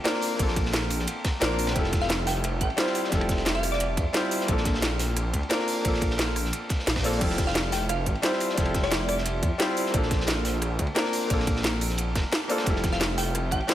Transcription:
Already playing: grand piano A#3 C4 D4 F4 A4
0.04 grand piano A#3 C4 D4 F4 A#4, snare, closed hi-hat, ride
0.14 cross-stick, snare
0.21 open hi-hat
0.36 detuned saw bass A#1, grand piano A#3 C4 D4, kick, closed hi-hat, ride
0.41 grand piano F4 A4
0.48 cross-stick, snare
0.56 kick, closed hi-hat, ride
0.65 snare
0.74 snare, closed hi-hat, ride
0.82 cross-stick
0.90 open hi-hat, ride
0.99 snare
1.07 closed hi-hat, ride
1.24 kick, snare, closed hi-hat, ride
1.40 detuned saw bass A#1, grand piano A#3 C4 D4 F4 A#4, snare, closed hi-hat, ride
1.59 open hi-hat, ride
1.67 snare, ride
1.73 detuned saw bass F1, grand piano G3 C4 E4, kick, closed hi-hat, ride
1.77 grand piano F4 A4
1.84 snare
1.93 kick, snare, closed hi-hat, ride
2.02 synth pluck F5, snare
2.09 snare, closed hi-hat, ride
2.27 synth pluck G5, snare, open hi-hat, ride
2.44 cross-stick, closed hi-hat, ride
2.61 detuned saw bass A1, synth pluck G5, kick, closed hi-hat, ride
2.70 ride
2.76 grand piano G3 C4 E4 F4 C5, snare, closed hi-hat, ride
2.87 cross-stick, snare
2.95 open hi-hat, ride
3.04 snare
3.09 detuned saw bass F1, grand piano G3 C4 E4, kick, snare, closed hi-hat, ride
3.14 grand piano F4 A4
3.21 cross-stick, ride
3.29 kick, snare, closed hi-hat
3.38 snare, ride
3.46 snare, closed hi-hat, ride
3.55 synth pluck F5, cross-stick
3.63 cross-stick, open hi-hat, ride
3.72 synth pluck D5, snare
3.80 closed hi-hat, ride
3.97 detuned saw bass F2, kick, closed hi-hat, ride
4.13 grand piano G3 C4 E4 F4 C5, snare, closed hi-hat, ride
4.31 open hi-hat, ride
4.41 snare
4.45 detuned saw bass A#1, grand piano A#3 C4 D4, kick, closed hi-hat, ride
4.50 grand piano F4 A4
4.57 snare
4.65 kick, snare, closed hi-hat, ride
4.74 snare
4.82 snare, closed hi-hat, ride
4.99 snare, open hi-hat, ride
5.16 cross-stick, closed hi-hat, ride
5.34 detuned saw bass D2, kick, closed hi-hat, ride
5.43 ride
5.49 grand piano A#3 C4 D4 F4 A#4, snare, closed hi-hat, ride
5.59 cross-stick, snare
5.68 open hi-hat
5.82 detuned saw bass A#1, grand piano A#3 C4 D4, kick, closed hi-hat, ride
5.86 grand piano F4 A4
5.94 cross-stick, snare
6.01 kick, closed hi-hat, ride
6.10 snare
6.19 snare, closed hi-hat, ride
6.28 cross-stick
6.36 cross-stick, open hi-hat, ride
6.45 snare
6.53 closed hi-hat, ride
6.69 kick, snare, closed hi-hat, ride
6.79 snare
6.87 detuned saw bass A#1, snare, closed hi-hat, open hi-hat
6.96 kick, snare, ride
7.03 grand piano A#3 C4 D4 F4 A4, snare, open hi-hat
7.13 open hi-hat
7.18 detuned saw bass F1, grand piano G3 C4 E4, kick, closed hi-hat, ride, crash
7.23 grand piano F4 A4
7.30 snare
7.38 kick, snare, closed hi-hat, ride
7.47 synth pluck F5, snare
7.55 snare, closed hi-hat, ride
7.72 synth pluck G5, snare, open hi-hat, ride
7.89 synth pluck F5, cross-stick, closed hi-hat, ride
8.06 detuned saw bass A1, kick, closed hi-hat, ride
8.15 ride
8.22 grand piano G3 C4 E4 F4 C5, snare, closed hi-hat, ride
8.32 cross-stick, snare
8.40 open hi-hat, ride
8.50 snare
8.54 detuned saw bass F1, grand piano G3 C4 E4, kick, snare, closed hi-hat, ride
8.59 grand piano F4 A4
8.65 cross-stick, ride
8.74 kick, snare, closed hi-hat
8.83 synth pluck D5, snare, ride
8.92 snare, closed hi-hat, ride
9.00 cross-stick
9.09 synth pluck D5, cross-stick, open hi-hat, ride
9.18 snare
9.26 closed hi-hat, ride
9.43 detuned saw bass F2, kick, closed hi-hat, ride
9.58 grand piano G3 C4 E4 F4 C5, snare, closed hi-hat, ride
9.77 open hi-hat, ride
9.86 snare
9.91 detuned saw bass A#1, grand piano A#3 C4 D4, kick, closed hi-hat, ride
9.96 grand piano F4 A4
10.03 snare
10.11 kick, snare, closed hi-hat, ride
10.20 snare
10.27 snare, closed hi-hat, ride
10.45 snare, open hi-hat, ride
10.62 cross-stick, closed hi-hat, ride
10.79 detuned saw bass D2, kick, closed hi-hat, ride
10.87 ride
10.95 grand piano A#3 C4 D4 F4 A#4, snare, closed hi-hat, ride
11.04 cross-stick, snare
11.13 open hi-hat
11.27 detuned saw bass A#1, grand piano A#3 C4 D4, kick, closed hi-hat, ride
11.32 grand piano F4 A4
11.39 cross-stick, snare
11.47 kick, closed hi-hat, ride
11.56 snare
11.64 snare, closed hi-hat, ride
11.73 cross-stick
11.81 open hi-hat, ride
11.90 snare
11.98 closed hi-hat, ride
12.15 detuned saw bass F1, kick, snare, closed hi-hat, ride
12.32 snare, closed hi-hat, ride
12.48 grand piano A#3 C4 D4 F4 A4, open hi-hat, ride
12.58 snare, ride
12.63 detuned saw bass F1, grand piano G3 C4 E4, kick, closed hi-hat, ride
12.68 grand piano F4 A4
12.76 snare
12.84 kick, snare, closed hi-hat, ride
12.92 synth pluck F5, snare
13.01 snare, closed hi-hat, ride
13.17 synth pluck G5, snare, open hi-hat, ride
13.35 cross-stick, closed hi-hat, ride
13.51 detuned saw bass A1, synth pluck G5, kick, closed hi-hat, ride
13.60 ride
13.67 grand piano G3 C4 E4 F4 C5, snare, closed hi-hat, ride

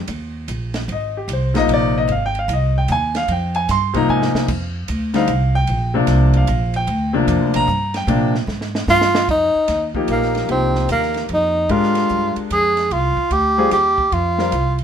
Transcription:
0.08 upright bass D#2, hi-hat pedal, ride
0.48 upright bass A#1, hi-hat pedal, ride
0.74 snare, ride
0.88 upright bass G#1, ride
0.92 grand piano D#5
1.17 grand piano G4
1.28 upright bass C2, hi-hat pedal, ride
1.33 grand piano C5
1.54 grand piano C3 F3 A#3 D#4 D#5, snare, ride
1.68 upright bass A#1, ride
1.74 grand piano D5
1.98 grand piano D#5
2.08 upright bass G#1, ride
2.12 grand piano F5
2.26 grand piano G5
2.35 ride
2.39 grand piano F5
2.48 upright bass C2, hi-hat pedal, ride
2.53 grand piano D#5
2.78 grand piano G5
2.88 upright bass D#2, grand piano G#5, hi-hat pedal, ride
3.15 grand piano F5, snare, ride
3.28 upright bass F2, ride
3.32 grand piano G5
3.55 grand piano G#5, ride
3.68 upright bass G2, grand piano C6, snare, hi-hat pedal, ride
3.94 grand piano C3 F3 A#3 D#4 A#5, kick, ride
4.09 upright bass G#2, grand piano G#5
4.22 snare
4.34 muted upright bass stroke, snare
4.48 upright bass F2, kick, crash
4.88 upright bass D2, hi-hat pedal, ride
5.14 grand piano D3 G3 C4 D#4 F5, snare, ride
5.27 upright bass C2, hi-hat pedal, ride
5.55 grand piano G5
5.67 upright bass A#1, ride
5.94 grand piano C3 F3 A#3 D4
6.07 upright bass C2, snare, hi-hat pedal, ride
6.34 grand piano F5, kick, ride
6.47 upright bass A#1, hi-hat pedal, ride
6.74 grand piano G5, ride
6.87 upright bass D2, ride
7.13 grand piano C3 F3 A#3 D4
7.27 upright bass F2, hi-hat pedal, ride
7.41 upright bass D2
7.54 upright bass A#1, grand piano A#5, ride
7.68 upright bass G2, hi-hat pedal
7.94 grand piano G5, snare, ride
8.07 upright bass A#2, grand piano C3 F3 A#3 D4, ride
8.35 snare
8.47 upright bass G#2, snare
8.61 snare
8.75 snare
8.87 upright bass G2, tenor saxophone F4, snare, hi-hat pedal
9.01 snare
9.15 snare
9.28 upright bass F2, tenor saxophone D#4, kick, crash
9.55 muted upright bass stroke
9.68 upright bass D#2, snare, hi-hat pedal, ride
9.94 grand piano F3 A#3 D#4 G4, kick
10.08 upright bass A#1, tenor saxophone A#3, hi-hat pedal, ride
10.22 snare
10.35 snare, ride
10.48 upright bass C2, grand piano F3 A#3 D#4 G4, tenor saxophone C4, ride
10.75 snare
10.89 upright bass D#2, tenor saxophone A#3, hi-hat pedal, ride
11.03 snare
11.14 snare, ride
11.29 upright bass F2, ride
11.34 tenor saxophone D#4
11.69 upright bass G#2, grand piano G#3 D4 G4 A#4, tenor saxophone F4, ride
11.83 snare
11.95 snare, ride
12.09 upright bass G2, hi-hat pedal
12.36 muted upright bass stroke, ride
12.50 upright bass F2, tenor saxophone G#4, hi-hat pedal, ride
12.77 snare, ride
12.90 upright bass C2, tenor saxophone F4, ride
13.17 kick
13.30 upright bass D2, tenor saxophone G4, ride
13.58 grand piano G3 C4 F4 G#4
13.71 upright bass D#2, tenor saxophone G4, snare, hi-hat pedal, ride
13.98 kick
14.12 upright bass F2, tenor saxophone F4, ride
14.38 grand piano G3 C4 F4 A#4, snare
14.51 upright bass C2, hi-hat pedal, ride
14.79 ride

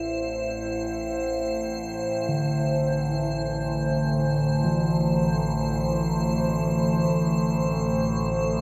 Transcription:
Already playing: synth drone A1, analog synth pad A3 E4 C5 E5, ambient pad C5
2.29 singing bowl D3
4.64 singing bowl E3

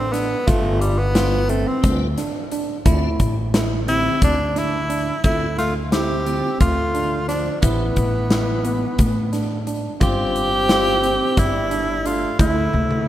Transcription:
Already playing: upright bass A1, tenor saxophone C4
0.12 tenor saxophone B3, tine electric piano D4, snare, closed hi-hat
0.47 upright bass G1, tenor saxophone A3, tine electric piano F4, kick, closed hi-hat
0.81 tenor saxophone G3, closed hi-hat
0.98 tenor saxophone B3
1.14 tonewheel organ G3 D4 F4 C5, tine electric piano F4, snare, closed hi-hat
1.49 tenor saxophone A3, tine electric piano C4, closed hi-hat
1.68 tenor saxophone C4
1.82 upright bass D2, tonewheel organ G3 D4 F4 B4, kick, closed hi-hat
2.18 tine electric piano D4, snare, closed hi-hat
2.51 tine electric piano D4, closed hi-hat
2.85 upright bass D2, tonewheel organ D3 C4 E4 F4, tine electric piano E4, kick, closed hi-hat
3.20 upright bass A1, kick, closed hi-hat
3.54 tine electric piano E4, snare, closed hi-hat
3.87 tonewheel organ D3 C4 E4 G4, tine electric piano C4, tenor saxophone E4, closed hi-hat
4.22 upright bass D2, tenor saxophone D4, kick, closed hi-hat
4.56 tine electric piano D4, tenor saxophone E4, snare, closed hi-hat
4.90 tine electric piano D4, closed hi-hat
5.24 upright bass D2, tonewheel organ D3 C4 E4 F4, alto saxophone A3, tenor saxophone E4, tine electric piano E5, kick, closed hi-hat
5.58 alto saxophone A3, tenor saxophone F4, snare, closed hi-hat
5.91 alto saxophone C4, tine electric piano E4, tenor saxophone G4, snare, closed hi-hat
6.26 tonewheel organ D3 C4 E4 F4, tine electric piano C4, closed hi-hat
6.60 upright bass D2, alto saxophone A3, tenor saxophone F4, kick, closed hi-hat
6.94 tine electric piano D4, closed hi-hat
7.28 alto saxophone F3, tine electric piano D4, tenor saxophone D4, snare, closed hi-hat
7.61 upright bass A1, alto saxophone E3, tonewheel organ A3 G4 B4 C5, tenor saxophone B3, tine electric piano E4, kick, closed hi-hat
7.96 upright bass A1, kick, closed hi-hat
8.30 tine electric piano E4, snare, closed hi-hat
8.65 tine electric piano B3, closed hi-hat
8.99 upright bass A2, kick, closed hi-hat
9.33 tine electric piano D4, snare, closed hi-hat
9.67 tine electric piano D4, closed hi-hat
10.00 upright bass G1, tonewheel organ G3 D4 F4 C5, alto saxophone C4, tine electric piano F4, tenor saxophone G4, kick, closed hi-hat
10.36 closed hi-hat
10.69 tine electric piano F4, snare, closed hi-hat
11.03 tine electric piano C4, closed hi-hat
11.37 upright bass G1, alto saxophone G3, tenor saxophone E4, kick, snare, closed hi-hat
11.71 tine electric piano D4, closed hi-hat
12.05 alto saxophone A3, tine electric piano D4, tenor saxophone F4, closed hi-hat
12.39 upright bass D2, alto saxophone A3, tine electric piano E4, tenor saxophone E4, kick, closed hi-hat
12.73 upright bass D2, high tom
12.91 high tom

